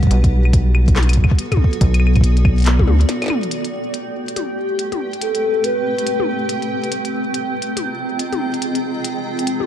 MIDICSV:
0, 0, Header, 1, 6, 480
1, 0, Start_track
1, 0, Tempo, 425532
1, 123, Time_signature, 4, 2, 24, 8
1, 10899, End_track
2, 0, Start_track
2, 0, Title_t, "Synth texture"
2, 0, Program_c, 0, 99
2, 3963, Note_on_c, 0, 79, 74
2, 10899, Note_off_c, 0, 79, 0
2, 10899, End_track
3, 0, Start_track
3, 0, Title_t, "Soft synth lead"
3, 0, Program_c, 1, 80
3, 4923, Note_on_c, 1, 67, 85
3, 5838, Note_off_c, 1, 67, 0
3, 5884, Note_on_c, 1, 69, 98
3, 6364, Note_on_c, 1, 71, 95
3, 6381, Note_off_c, 1, 69, 0
3, 7563, Note_off_c, 1, 71, 0
3, 10899, End_track
4, 0, Start_track
4, 0, Title_t, "Ambient pad"
4, 0, Program_c, 2, 92
4, 0, Note_on_c, 2, 55, 83
4, 0, Note_on_c, 2, 67, 87
4, 0, Note_on_c, 2, 71, 95
4, 0, Note_on_c, 2, 78, 77
4, 123, Note_off_c, 2, 55, 0
4, 123, Note_off_c, 2, 67, 0
4, 123, Note_on_c, 2, 59, 84
4, 213, Note_on_c, 2, 66, 90
4, 533, Note_on_c, 2, 69, 83
4, 1114, Note_on_c, 2, 74, 75
4, 1486, Note_off_c, 2, 71, 0
4, 1682, Note_off_c, 2, 78, 0
4, 3962, Note_off_c, 2, 66, 0
4, 3963, Note_off_c, 2, 59, 0
4, 3963, Note_on_c, 2, 57, 75
4, 4045, Note_on_c, 2, 67, 77
4, 4573, Note_off_c, 2, 69, 0
4, 4794, Note_on_c, 2, 71, 66
4, 4820, Note_off_c, 2, 74, 0
4, 5092, Note_on_c, 2, 60, 83
4, 7802, Note_off_c, 2, 67, 0
4, 7803, Note_off_c, 2, 57, 0
4, 7803, Note_off_c, 2, 71, 0
4, 7803, Note_on_c, 2, 65, 69
4, 7989, Note_on_c, 2, 82, 80
4, 8227, Note_on_c, 2, 68, 93
4, 8248, Note_on_c, 2, 75, 78
4, 8630, Note_on_c, 2, 79, 83
4, 10899, Note_off_c, 2, 60, 0
4, 10899, Note_off_c, 2, 65, 0
4, 10899, Note_off_c, 2, 68, 0
4, 10899, Note_off_c, 2, 75, 0
4, 10899, Note_off_c, 2, 79, 0
4, 10899, Note_off_c, 2, 82, 0
4, 10899, End_track
5, 0, Start_track
5, 0, Title_t, "Analog synth bass"
5, 0, Program_c, 3, 38
5, 123, Note_on_c, 3, 35, 100
5, 1413, Note_off_c, 3, 35, 0
5, 2043, Note_on_c, 3, 35, 96
5, 3236, Note_off_c, 3, 35, 0
5, 3243, Note_on_c, 3, 38, 80
5, 3438, Note_off_c, 3, 38, 0
5, 10899, End_track
6, 0, Start_track
6, 0, Title_t, "Drums"
6, 31, Note_on_c, 9, 36, 71
6, 31, Note_on_c, 9, 42, 33
6, 77, Note_off_c, 9, 36, 0
6, 77, Note_on_c, 9, 36, 57
6, 122, Note_off_c, 9, 42, 0
6, 122, Note_on_c, 9, 42, 74
6, 190, Note_off_c, 9, 36, 0
6, 235, Note_off_c, 9, 42, 0
6, 271, Note_on_c, 9, 36, 96
6, 271, Note_on_c, 9, 42, 51
6, 384, Note_off_c, 9, 36, 0
6, 384, Note_off_c, 9, 42, 0
6, 511, Note_on_c, 9, 75, 38
6, 602, Note_on_c, 9, 36, 113
6, 602, Note_on_c, 9, 42, 75
6, 624, Note_off_c, 9, 75, 0
6, 715, Note_off_c, 9, 36, 0
6, 715, Note_off_c, 9, 42, 0
6, 843, Note_on_c, 9, 75, 62
6, 955, Note_off_c, 9, 75, 0
6, 991, Note_on_c, 9, 36, 98
6, 992, Note_on_c, 9, 42, 49
6, 1083, Note_off_c, 9, 42, 0
6, 1083, Note_on_c, 9, 39, 110
6, 1083, Note_on_c, 9, 42, 35
6, 1083, Note_on_c, 9, 48, 87
6, 1104, Note_off_c, 9, 36, 0
6, 1157, Note_off_c, 9, 42, 0
6, 1157, Note_on_c, 9, 42, 45
6, 1195, Note_off_c, 9, 39, 0
6, 1195, Note_off_c, 9, 48, 0
6, 1231, Note_off_c, 9, 42, 0
6, 1231, Note_on_c, 9, 42, 53
6, 1231, Note_on_c, 9, 75, 51
6, 1277, Note_off_c, 9, 42, 0
6, 1277, Note_on_c, 9, 42, 62
6, 1323, Note_on_c, 9, 36, 50
6, 1344, Note_off_c, 9, 75, 0
6, 1390, Note_off_c, 9, 42, 0
6, 1397, Note_on_c, 9, 75, 62
6, 1403, Note_off_c, 9, 36, 0
6, 1403, Note_on_c, 9, 36, 68
6, 1483, Note_off_c, 9, 36, 0
6, 1483, Note_on_c, 9, 36, 85
6, 1510, Note_off_c, 9, 75, 0
6, 1563, Note_on_c, 9, 42, 73
6, 1595, Note_off_c, 9, 36, 0
6, 1676, Note_off_c, 9, 42, 0
6, 1711, Note_on_c, 9, 36, 43
6, 1712, Note_on_c, 9, 42, 36
6, 1712, Note_on_c, 9, 48, 94
6, 1712, Note_on_c, 9, 75, 50
6, 1772, Note_off_c, 9, 36, 0
6, 1772, Note_on_c, 9, 36, 59
6, 1825, Note_off_c, 9, 42, 0
6, 1825, Note_off_c, 9, 48, 0
6, 1825, Note_off_c, 9, 75, 0
6, 1852, Note_off_c, 9, 36, 0
6, 1852, Note_on_c, 9, 36, 74
6, 1951, Note_on_c, 9, 42, 36
6, 1965, Note_off_c, 9, 36, 0
6, 2042, Note_off_c, 9, 42, 0
6, 2042, Note_on_c, 9, 42, 78
6, 2043, Note_on_c, 9, 36, 110
6, 2155, Note_off_c, 9, 36, 0
6, 2155, Note_off_c, 9, 42, 0
6, 2191, Note_on_c, 9, 42, 51
6, 2191, Note_on_c, 9, 75, 58
6, 2252, Note_off_c, 9, 75, 0
6, 2252, Note_on_c, 9, 75, 46
6, 2304, Note_off_c, 9, 42, 0
6, 2332, Note_off_c, 9, 75, 0
6, 2332, Note_on_c, 9, 75, 40
6, 2432, Note_off_c, 9, 75, 0
6, 2432, Note_on_c, 9, 36, 45
6, 2432, Note_on_c, 9, 42, 38
6, 2432, Note_on_c, 9, 75, 37
6, 2443, Note_off_c, 9, 36, 0
6, 2443, Note_on_c, 9, 36, 61
6, 2492, Note_off_c, 9, 36, 0
6, 2492, Note_on_c, 9, 36, 76
6, 2523, Note_off_c, 9, 42, 0
6, 2523, Note_on_c, 9, 42, 83
6, 2544, Note_off_c, 9, 75, 0
6, 2605, Note_off_c, 9, 36, 0
6, 2636, Note_off_c, 9, 42, 0
6, 2672, Note_on_c, 9, 42, 37
6, 2763, Note_on_c, 9, 36, 107
6, 2763, Note_on_c, 9, 75, 60
6, 2784, Note_off_c, 9, 42, 0
6, 2875, Note_off_c, 9, 36, 0
6, 2876, Note_off_c, 9, 75, 0
6, 2912, Note_on_c, 9, 42, 23
6, 2935, Note_off_c, 9, 42, 0
6, 2935, Note_on_c, 9, 42, 29
6, 2958, Note_off_c, 9, 42, 0
6, 2958, Note_on_c, 9, 42, 37
6, 2980, Note_off_c, 9, 42, 0
6, 2980, Note_on_c, 9, 42, 42
6, 3003, Note_off_c, 9, 42, 0
6, 3003, Note_on_c, 9, 39, 116
6, 3003, Note_on_c, 9, 42, 79
6, 3116, Note_off_c, 9, 39, 0
6, 3116, Note_off_c, 9, 42, 0
6, 3152, Note_on_c, 9, 36, 97
6, 3152, Note_on_c, 9, 48, 96
6, 3243, Note_off_c, 9, 48, 0
6, 3243, Note_on_c, 9, 48, 85
6, 3264, Note_off_c, 9, 36, 0
6, 3356, Note_off_c, 9, 48, 0
6, 3392, Note_on_c, 9, 42, 37
6, 3483, Note_off_c, 9, 42, 0
6, 3483, Note_on_c, 9, 38, 58
6, 3483, Note_on_c, 9, 42, 76
6, 3596, Note_off_c, 9, 38, 0
6, 3596, Note_off_c, 9, 42, 0
6, 3632, Note_on_c, 9, 38, 28
6, 3632, Note_on_c, 9, 42, 35
6, 3632, Note_on_c, 9, 75, 53
6, 3655, Note_off_c, 9, 38, 0
6, 3655, Note_on_c, 9, 38, 35
6, 3678, Note_off_c, 9, 38, 0
6, 3678, Note_on_c, 9, 38, 41
6, 3701, Note_off_c, 9, 38, 0
6, 3701, Note_on_c, 9, 38, 49
6, 3723, Note_off_c, 9, 75, 0
6, 3723, Note_on_c, 9, 47, 85
6, 3723, Note_on_c, 9, 75, 54
6, 3745, Note_off_c, 9, 42, 0
6, 3813, Note_off_c, 9, 38, 0
6, 3836, Note_off_c, 9, 47, 0
6, 3836, Note_off_c, 9, 75, 0
6, 3872, Note_on_c, 9, 42, 36
6, 3963, Note_off_c, 9, 42, 0
6, 3963, Note_on_c, 9, 42, 74
6, 4076, Note_off_c, 9, 42, 0
6, 4112, Note_on_c, 9, 42, 48
6, 4224, Note_off_c, 9, 42, 0
6, 4443, Note_on_c, 9, 42, 71
6, 4556, Note_off_c, 9, 42, 0
6, 4831, Note_on_c, 9, 42, 48
6, 4922, Note_off_c, 9, 42, 0
6, 4922, Note_on_c, 9, 42, 74
6, 4922, Note_on_c, 9, 48, 72
6, 5035, Note_off_c, 9, 42, 0
6, 5035, Note_off_c, 9, 48, 0
6, 5403, Note_on_c, 9, 42, 71
6, 5515, Note_off_c, 9, 42, 0
6, 5552, Note_on_c, 9, 42, 33
6, 5552, Note_on_c, 9, 48, 80
6, 5664, Note_off_c, 9, 42, 0
6, 5664, Note_off_c, 9, 48, 0
6, 5791, Note_on_c, 9, 42, 35
6, 5882, Note_off_c, 9, 42, 0
6, 5882, Note_on_c, 9, 42, 74
6, 5995, Note_off_c, 9, 42, 0
6, 6031, Note_on_c, 9, 42, 47
6, 6144, Note_off_c, 9, 42, 0
6, 6362, Note_on_c, 9, 42, 75
6, 6475, Note_off_c, 9, 42, 0
6, 6751, Note_on_c, 9, 42, 48
6, 6842, Note_off_c, 9, 42, 0
6, 6842, Note_on_c, 9, 42, 73
6, 6955, Note_off_c, 9, 42, 0
6, 6991, Note_on_c, 9, 48, 83
6, 7104, Note_off_c, 9, 48, 0
6, 7322, Note_on_c, 9, 42, 73
6, 7435, Note_off_c, 9, 42, 0
6, 7471, Note_on_c, 9, 42, 34
6, 7584, Note_off_c, 9, 42, 0
6, 7711, Note_on_c, 9, 42, 34
6, 7802, Note_off_c, 9, 42, 0
6, 7802, Note_on_c, 9, 42, 74
6, 7915, Note_off_c, 9, 42, 0
6, 7951, Note_on_c, 9, 42, 47
6, 8064, Note_off_c, 9, 42, 0
6, 8282, Note_on_c, 9, 42, 73
6, 8395, Note_off_c, 9, 42, 0
6, 8597, Note_on_c, 9, 42, 48
6, 8709, Note_off_c, 9, 42, 0
6, 8762, Note_on_c, 9, 42, 75
6, 8762, Note_on_c, 9, 48, 70
6, 8875, Note_off_c, 9, 42, 0
6, 8875, Note_off_c, 9, 48, 0
6, 9242, Note_on_c, 9, 42, 72
6, 9355, Note_off_c, 9, 42, 0
6, 9391, Note_on_c, 9, 42, 32
6, 9391, Note_on_c, 9, 48, 79
6, 9504, Note_off_c, 9, 42, 0
6, 9504, Note_off_c, 9, 48, 0
6, 9631, Note_on_c, 9, 42, 35
6, 9722, Note_off_c, 9, 42, 0
6, 9722, Note_on_c, 9, 42, 70
6, 9835, Note_off_c, 9, 42, 0
6, 9871, Note_on_c, 9, 42, 46
6, 9984, Note_off_c, 9, 42, 0
6, 10203, Note_on_c, 9, 42, 73
6, 10315, Note_off_c, 9, 42, 0
6, 10591, Note_on_c, 9, 42, 47
6, 10682, Note_off_c, 9, 42, 0
6, 10682, Note_on_c, 9, 42, 73
6, 10795, Note_off_c, 9, 42, 0
6, 10831, Note_on_c, 9, 48, 77
6, 10842, Note_off_c, 9, 48, 0
6, 10842, Note_on_c, 9, 48, 62
6, 10899, Note_off_c, 9, 48, 0
6, 10899, End_track
0, 0, End_of_file